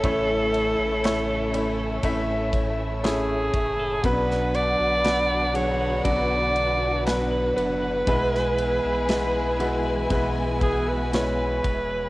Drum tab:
RD |x-x-x-x-x-x-x-x-|x-x-x-x-x-x-x-x-|x-x-x-x-x-x-x-x-|
SD |----o-------o---|-o--o-------o---|-o--o-------o---|
BD |o-------o-o---o-|o-------o-------|o-------o-o---o-|